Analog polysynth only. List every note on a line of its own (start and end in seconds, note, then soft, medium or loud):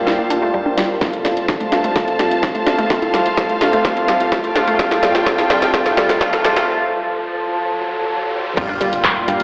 0.00 0.98 A#2 medium
0.00 0.98 G3 medium
0.00 0.98 F4 medium
1.01 1.69 C3 medium
1.01 1.69 A3 medium
1.01 1.69 F4 medium
1.72 1.94 C3 medium
1.72 1.94 A3 medium
1.72 1.94 F4 medium
1.96 2.64 C3 medium
1.96 2.64 A3 medium
1.96 2.64 F4 medium
2.67 2.88 C3 medium
2.67 2.88 A3 medium
2.67 2.88 F4 medium
2.90 3.58 C3 medium
2.90 3.58 A3 medium
2.90 3.58 F4 medium
3.61 3.83 C3 medium
3.61 3.83 A3 medium
3.61 3.83 F4 medium
3.85 4.53 C3 medium
3.85 4.53 A3 medium
3.85 4.53 F4 medium
4.56 4.77 C3 medium
4.56 4.77 A3 medium
4.56 4.77 F4 medium
4.79 5.25 C3 medium
4.79 5.25 A3 medium
4.79 5.25 F4 medium
5.26 5.72 C3 medium
5.26 5.72 A3 medium
5.26 5.72 F4 medium
5.74 6.19 C3 medium
5.74 6.19 A3 medium
5.74 6.19 F4 medium
6.21 6.66 C3 medium
6.21 6.66 A3 medium
6.21 6.66 F4 medium
8.57 9.25 A#2 medium
8.57 9.25 G3 medium
8.57 9.25 F4 medium
9.28 9.43 A#2 medium
9.28 9.43 G3 medium
9.28 9.43 F4 medium